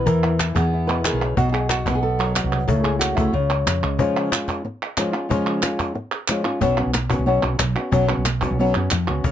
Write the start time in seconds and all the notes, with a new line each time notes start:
Already playing: B4
0.06 E2 E3 A#4, cajon bass
0.24 E4
0.39 E4, cajon slap, clap
0.55 E2 B3 G#4, cajon bass
0.74 E4
0.87 B2 B4
1.04 D#3 G#4, cajon slap, clap
1.13 B1
1.22 C#3
1.37 B1 B2 F#4, cajon bass
1.52 G#4
1.69 F#4, cajon slap, clap
1.86 B1 B3, cajon bass
1.95 G#4
2.03 A4
2.19 F#3 B4
2.36 F#4, cajon slap, clap
2.44 C2
2.68 C#2 C#3 A3 E4 A4, cajon bass
2.84 G#4
2.99 F#4, cajon slap, clap
3.15 C#2 A3 E4, cajon bass
3.33 C#2 C#3 F4, cajon slap
3.66 F2, cajon slap, clap
3.82 C#2 G#3, cajon slap
3.98 C#3 F3 G#3 C#4 F4, cajon bass
4.32 G#3 C#4 F4, cajon slap, clap
4.48 cajon bass, cajon slap
4.65 muted nylon-string guitar stroke
4.97 F3 G#3 C#4 F4, cajon slap, clap
5.12 G#3 C#4 F4
5.29 C#3 F3 G#3 C#4 F4, cajon bass
5.62 G#3 C#4 F4, cajon slap, clap
5.80 cajon bass, cajon slap
5.95 muted nylon-string guitar stroke, cajon slap
6.28 F3 G#3 C#4 F4, cajon slap, clap
6.44 G#3 C#4 F4
6.61 B1 B2 F#3 B3 C#4 F#4, cajon bass
6.77 B3 C#4 F#4
6.86 B1
6.93 muted nylon-string guitar stroke, cajon slap, clap
7.10 B3 C#4 F#4, cajon bass
7.19 B1
7.26 B2 F#3 B3 C#4 F#4
7.43 B1 B3 C#4 F#4
7.58 B1, muted nylon-string guitar stroke, cajon slap, clap
7.75 B3 C#4 F#4
7.91 B1 B2 F#3 B3 C#4 F#4, cajon bass
8.08 B3 C#4 F#4
8.17 B1
8.25 muted nylon-string guitar stroke, cajon slap, clap
8.42 B3 C#4 F#4, cajon bass
8.51 B1
8.59 B2 F#3 B3 C#4 F#4, cajon slap
8.75 F#2 B3 C#4 F#4
8.91 F2, muted nylon-string guitar stroke, cajon slap, clap
9.07 C#2 B3 C#4 F#4
9.24 C#2 C#3, cajon bass